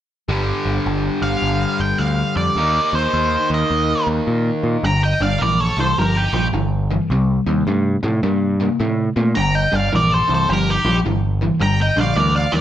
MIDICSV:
0, 0, Header, 1, 5, 480
1, 0, Start_track
1, 0, Tempo, 568182
1, 247, Time_signature, 4, 2, 24, 8
1, 5046, Tempo, 563380
1, 10700, End_track
2, 0, Start_track
2, 0, Title_t, "Lead electric guitar"
2, 0, Program_c, 0, 29
2, 1035, Note_on_c, 0, 77, 73
2, 1503, Note_off_c, 0, 77, 0
2, 1525, Note_on_c, 0, 79, 77
2, 1676, Note_on_c, 0, 77, 76
2, 1689, Note_off_c, 0, 79, 0
2, 1982, Note_off_c, 0, 77, 0
2, 2001, Note_on_c, 0, 74, 68
2, 2466, Note_off_c, 0, 74, 0
2, 2492, Note_on_c, 0, 72, 67
2, 2951, Note_off_c, 0, 72, 0
2, 2991, Note_on_c, 0, 75, 91
2, 3441, Note_off_c, 0, 75, 0
2, 4102, Note_on_c, 0, 82, 90
2, 4250, Note_off_c, 0, 82, 0
2, 4254, Note_on_c, 0, 79, 74
2, 4407, Note_off_c, 0, 79, 0
2, 4411, Note_on_c, 0, 77, 72
2, 4565, Note_off_c, 0, 77, 0
2, 4582, Note_on_c, 0, 74, 76
2, 4736, Note_off_c, 0, 74, 0
2, 4736, Note_on_c, 0, 73, 74
2, 4886, Note_off_c, 0, 73, 0
2, 4902, Note_on_c, 0, 72, 72
2, 5055, Note_off_c, 0, 72, 0
2, 5055, Note_on_c, 0, 70, 76
2, 5214, Note_off_c, 0, 70, 0
2, 5214, Note_on_c, 0, 67, 79
2, 5466, Note_off_c, 0, 67, 0
2, 7924, Note_on_c, 0, 82, 91
2, 8094, Note_off_c, 0, 82, 0
2, 8094, Note_on_c, 0, 79, 73
2, 8266, Note_off_c, 0, 79, 0
2, 8266, Note_on_c, 0, 77, 77
2, 8413, Note_off_c, 0, 77, 0
2, 8439, Note_on_c, 0, 74, 83
2, 8595, Note_off_c, 0, 74, 0
2, 8595, Note_on_c, 0, 72, 88
2, 8738, Note_off_c, 0, 72, 0
2, 8770, Note_on_c, 0, 72, 84
2, 8905, Note_off_c, 0, 72, 0
2, 8931, Note_on_c, 0, 70, 83
2, 9066, Note_off_c, 0, 70, 0
2, 9081, Note_on_c, 0, 67, 82
2, 9320, Note_off_c, 0, 67, 0
2, 9857, Note_on_c, 0, 82, 99
2, 10008, Note_off_c, 0, 82, 0
2, 10023, Note_on_c, 0, 79, 82
2, 10168, Note_on_c, 0, 77, 74
2, 10171, Note_off_c, 0, 79, 0
2, 10320, Note_off_c, 0, 77, 0
2, 10320, Note_on_c, 0, 74, 85
2, 10479, Note_off_c, 0, 74, 0
2, 10488, Note_on_c, 0, 77, 82
2, 10624, Note_on_c, 0, 74, 80
2, 10643, Note_off_c, 0, 77, 0
2, 10700, Note_off_c, 0, 74, 0
2, 10700, End_track
3, 0, Start_track
3, 0, Title_t, "Lead electric guitar"
3, 0, Program_c, 1, 29
3, 4104, Note_on_c, 1, 79, 71
3, 4246, Note_off_c, 1, 79, 0
3, 4265, Note_on_c, 1, 75, 71
3, 4406, Note_off_c, 1, 75, 0
3, 4411, Note_on_c, 1, 74, 59
3, 4554, Note_on_c, 1, 70, 70
3, 4559, Note_off_c, 1, 74, 0
3, 4731, Note_off_c, 1, 70, 0
3, 4731, Note_on_c, 1, 69, 69
3, 4876, Note_off_c, 1, 69, 0
3, 4886, Note_on_c, 1, 69, 59
3, 5052, Note_off_c, 1, 69, 0
3, 5052, Note_on_c, 1, 67, 72
3, 5205, Note_off_c, 1, 67, 0
3, 5205, Note_on_c, 1, 63, 63
3, 5469, Note_off_c, 1, 63, 0
3, 7941, Note_on_c, 1, 79, 71
3, 8094, Note_off_c, 1, 79, 0
3, 8094, Note_on_c, 1, 75, 73
3, 8260, Note_off_c, 1, 75, 0
3, 8260, Note_on_c, 1, 74, 64
3, 8410, Note_off_c, 1, 74, 0
3, 8410, Note_on_c, 1, 70, 76
3, 8582, Note_off_c, 1, 70, 0
3, 8582, Note_on_c, 1, 69, 68
3, 8720, Note_off_c, 1, 69, 0
3, 8731, Note_on_c, 1, 69, 64
3, 8879, Note_off_c, 1, 69, 0
3, 8905, Note_on_c, 1, 67, 67
3, 9046, Note_off_c, 1, 67, 0
3, 9072, Note_on_c, 1, 63, 72
3, 9305, Note_off_c, 1, 63, 0
3, 9861, Note_on_c, 1, 79, 84
3, 10004, Note_off_c, 1, 79, 0
3, 10031, Note_on_c, 1, 75, 71
3, 10169, Note_off_c, 1, 75, 0
3, 10189, Note_on_c, 1, 74, 62
3, 10347, Note_off_c, 1, 74, 0
3, 10347, Note_on_c, 1, 70, 73
3, 10478, Note_off_c, 1, 70, 0
3, 10481, Note_on_c, 1, 74, 66
3, 10633, Note_off_c, 1, 74, 0
3, 10652, Note_on_c, 1, 70, 69
3, 10700, Note_off_c, 1, 70, 0
3, 10700, End_track
4, 0, Start_track
4, 0, Title_t, "Distorted electric guitar"
4, 0, Program_c, 2, 30
4, 240, Note_on_c, 2, 43, 75
4, 247, Note_on_c, 2, 50, 86
4, 256, Note_on_c, 2, 55, 79
4, 2158, Note_off_c, 2, 43, 0
4, 2162, Note_off_c, 2, 50, 0
4, 2170, Note_on_c, 2, 51, 85
4, 2176, Note_off_c, 2, 55, 0
4, 2180, Note_on_c, 2, 58, 84
4, 2185, Note_on_c, 2, 63, 93
4, 4079, Note_off_c, 2, 51, 0
4, 4084, Note_off_c, 2, 58, 0
4, 4086, Note_off_c, 2, 63, 0
4, 4092, Note_on_c, 2, 43, 86
4, 4099, Note_on_c, 2, 50, 81
4, 4367, Note_off_c, 2, 43, 0
4, 4371, Note_off_c, 2, 50, 0
4, 4400, Note_on_c, 2, 43, 75
4, 4408, Note_on_c, 2, 50, 81
4, 4553, Note_off_c, 2, 43, 0
4, 4557, Note_off_c, 2, 50, 0
4, 4580, Note_on_c, 2, 43, 67
4, 4588, Note_on_c, 2, 52, 85
4, 4850, Note_off_c, 2, 43, 0
4, 4854, Note_off_c, 2, 52, 0
4, 4888, Note_on_c, 2, 43, 63
4, 4890, Note_on_c, 2, 52, 76
4, 5036, Note_off_c, 2, 43, 0
4, 5037, Note_off_c, 2, 52, 0
4, 5055, Note_on_c, 2, 43, 73
4, 5057, Note_on_c, 2, 53, 70
4, 5328, Note_off_c, 2, 43, 0
4, 5329, Note_off_c, 2, 53, 0
4, 5356, Note_on_c, 2, 43, 68
4, 5360, Note_on_c, 2, 53, 75
4, 5511, Note_off_c, 2, 43, 0
4, 5513, Note_off_c, 2, 53, 0
4, 5528, Note_on_c, 2, 43, 72
4, 5535, Note_on_c, 2, 52, 71
4, 5805, Note_off_c, 2, 43, 0
4, 5809, Note_off_c, 2, 52, 0
4, 5842, Note_on_c, 2, 43, 66
4, 5848, Note_on_c, 2, 52, 72
4, 5994, Note_off_c, 2, 43, 0
4, 5997, Note_off_c, 2, 52, 0
4, 6020, Note_on_c, 2, 48, 75
4, 6021, Note_on_c, 2, 55, 84
4, 6291, Note_off_c, 2, 48, 0
4, 6292, Note_off_c, 2, 55, 0
4, 6317, Note_on_c, 2, 48, 73
4, 6321, Note_on_c, 2, 55, 78
4, 6472, Note_off_c, 2, 48, 0
4, 6474, Note_off_c, 2, 55, 0
4, 6496, Note_on_c, 2, 48, 69
4, 6501, Note_on_c, 2, 57, 82
4, 6770, Note_off_c, 2, 48, 0
4, 6772, Note_off_c, 2, 57, 0
4, 6798, Note_on_c, 2, 48, 71
4, 6801, Note_on_c, 2, 57, 81
4, 6953, Note_off_c, 2, 48, 0
4, 6954, Note_off_c, 2, 57, 0
4, 6972, Note_on_c, 2, 48, 66
4, 6974, Note_on_c, 2, 58, 84
4, 7248, Note_off_c, 2, 48, 0
4, 7249, Note_off_c, 2, 58, 0
4, 7283, Note_on_c, 2, 48, 72
4, 7292, Note_on_c, 2, 58, 72
4, 7436, Note_off_c, 2, 48, 0
4, 7440, Note_off_c, 2, 58, 0
4, 7452, Note_on_c, 2, 48, 70
4, 7460, Note_on_c, 2, 57, 75
4, 7728, Note_off_c, 2, 48, 0
4, 7732, Note_off_c, 2, 57, 0
4, 7761, Note_on_c, 2, 48, 69
4, 7770, Note_on_c, 2, 57, 79
4, 7915, Note_off_c, 2, 48, 0
4, 7919, Note_off_c, 2, 57, 0
4, 7928, Note_on_c, 2, 43, 88
4, 7930, Note_on_c, 2, 50, 89
4, 8206, Note_off_c, 2, 43, 0
4, 8207, Note_off_c, 2, 50, 0
4, 8237, Note_on_c, 2, 43, 82
4, 8242, Note_on_c, 2, 50, 72
4, 8393, Note_off_c, 2, 43, 0
4, 8395, Note_off_c, 2, 50, 0
4, 8413, Note_on_c, 2, 43, 79
4, 8414, Note_on_c, 2, 52, 86
4, 8688, Note_off_c, 2, 43, 0
4, 8689, Note_off_c, 2, 52, 0
4, 8716, Note_on_c, 2, 43, 70
4, 8720, Note_on_c, 2, 52, 78
4, 8872, Note_off_c, 2, 43, 0
4, 8874, Note_off_c, 2, 52, 0
4, 8897, Note_on_c, 2, 43, 76
4, 8898, Note_on_c, 2, 53, 83
4, 9170, Note_off_c, 2, 43, 0
4, 9171, Note_off_c, 2, 53, 0
4, 9201, Note_on_c, 2, 43, 66
4, 9205, Note_on_c, 2, 53, 72
4, 9354, Note_off_c, 2, 43, 0
4, 9356, Note_off_c, 2, 53, 0
4, 9377, Note_on_c, 2, 43, 73
4, 9377, Note_on_c, 2, 52, 69
4, 9649, Note_off_c, 2, 43, 0
4, 9649, Note_off_c, 2, 52, 0
4, 9679, Note_on_c, 2, 43, 63
4, 9687, Note_on_c, 2, 52, 81
4, 9826, Note_off_c, 2, 43, 0
4, 9837, Note_off_c, 2, 52, 0
4, 9837, Note_on_c, 2, 43, 88
4, 9844, Note_on_c, 2, 50, 81
4, 10119, Note_off_c, 2, 43, 0
4, 10123, Note_off_c, 2, 50, 0
4, 10149, Note_on_c, 2, 43, 69
4, 10152, Note_on_c, 2, 50, 79
4, 10307, Note_off_c, 2, 43, 0
4, 10309, Note_off_c, 2, 50, 0
4, 10319, Note_on_c, 2, 43, 73
4, 10325, Note_on_c, 2, 52, 79
4, 10600, Note_off_c, 2, 43, 0
4, 10603, Note_off_c, 2, 52, 0
4, 10627, Note_on_c, 2, 43, 68
4, 10629, Note_on_c, 2, 52, 76
4, 10700, Note_off_c, 2, 43, 0
4, 10700, Note_off_c, 2, 52, 0
4, 10700, End_track
5, 0, Start_track
5, 0, Title_t, "Picked electric bass"
5, 0, Program_c, 3, 34
5, 243, Note_on_c, 3, 31, 78
5, 431, Note_off_c, 3, 31, 0
5, 552, Note_on_c, 3, 31, 71
5, 658, Note_off_c, 3, 31, 0
5, 728, Note_on_c, 3, 31, 83
5, 915, Note_off_c, 3, 31, 0
5, 1030, Note_on_c, 3, 31, 74
5, 1137, Note_off_c, 3, 31, 0
5, 1201, Note_on_c, 3, 31, 75
5, 1391, Note_off_c, 3, 31, 0
5, 1519, Note_on_c, 3, 31, 73
5, 1624, Note_off_c, 3, 31, 0
5, 1685, Note_on_c, 3, 38, 75
5, 1874, Note_off_c, 3, 38, 0
5, 1995, Note_on_c, 3, 41, 80
5, 2101, Note_off_c, 3, 41, 0
5, 2161, Note_on_c, 3, 39, 86
5, 2351, Note_off_c, 3, 39, 0
5, 2475, Note_on_c, 3, 39, 74
5, 2582, Note_off_c, 3, 39, 0
5, 2649, Note_on_c, 3, 39, 88
5, 2837, Note_off_c, 3, 39, 0
5, 2957, Note_on_c, 3, 39, 80
5, 3063, Note_off_c, 3, 39, 0
5, 3130, Note_on_c, 3, 39, 82
5, 3317, Note_off_c, 3, 39, 0
5, 3438, Note_on_c, 3, 39, 75
5, 3543, Note_off_c, 3, 39, 0
5, 3609, Note_on_c, 3, 46, 82
5, 3796, Note_off_c, 3, 46, 0
5, 3915, Note_on_c, 3, 46, 74
5, 4020, Note_off_c, 3, 46, 0
5, 4084, Note_on_c, 3, 31, 88
5, 4330, Note_off_c, 3, 31, 0
5, 4397, Note_on_c, 3, 31, 83
5, 4533, Note_off_c, 3, 31, 0
5, 4577, Note_on_c, 3, 34, 88
5, 4817, Note_off_c, 3, 34, 0
5, 4873, Note_on_c, 3, 36, 78
5, 5010, Note_off_c, 3, 36, 0
5, 5053, Note_on_c, 3, 31, 87
5, 5295, Note_off_c, 3, 31, 0
5, 5349, Note_on_c, 3, 34, 80
5, 5489, Note_off_c, 3, 34, 0
5, 5519, Note_on_c, 3, 31, 87
5, 5905, Note_off_c, 3, 31, 0
5, 6007, Note_on_c, 3, 36, 86
5, 6253, Note_off_c, 3, 36, 0
5, 6318, Note_on_c, 3, 39, 82
5, 6455, Note_off_c, 3, 39, 0
5, 6490, Note_on_c, 3, 43, 91
5, 6735, Note_off_c, 3, 43, 0
5, 6804, Note_on_c, 3, 45, 85
5, 6938, Note_off_c, 3, 45, 0
5, 6970, Note_on_c, 3, 43, 91
5, 7352, Note_off_c, 3, 43, 0
5, 7454, Note_on_c, 3, 45, 76
5, 7697, Note_off_c, 3, 45, 0
5, 7764, Note_on_c, 3, 46, 85
5, 7898, Note_off_c, 3, 46, 0
5, 7941, Note_on_c, 3, 31, 89
5, 8181, Note_off_c, 3, 31, 0
5, 8247, Note_on_c, 3, 31, 85
5, 8380, Note_off_c, 3, 31, 0
5, 8423, Note_on_c, 3, 34, 84
5, 8662, Note_off_c, 3, 34, 0
5, 8727, Note_on_c, 3, 36, 85
5, 8860, Note_off_c, 3, 36, 0
5, 8893, Note_on_c, 3, 31, 95
5, 9136, Note_off_c, 3, 31, 0
5, 9198, Note_on_c, 3, 34, 83
5, 9334, Note_off_c, 3, 34, 0
5, 9369, Note_on_c, 3, 31, 81
5, 9750, Note_off_c, 3, 31, 0
5, 9846, Note_on_c, 3, 31, 88
5, 10091, Note_off_c, 3, 31, 0
5, 10153, Note_on_c, 3, 34, 84
5, 10291, Note_off_c, 3, 34, 0
5, 10321, Note_on_c, 3, 38, 87
5, 10568, Note_off_c, 3, 38, 0
5, 10634, Note_on_c, 3, 39, 81
5, 10700, Note_off_c, 3, 39, 0
5, 10700, End_track
0, 0, End_of_file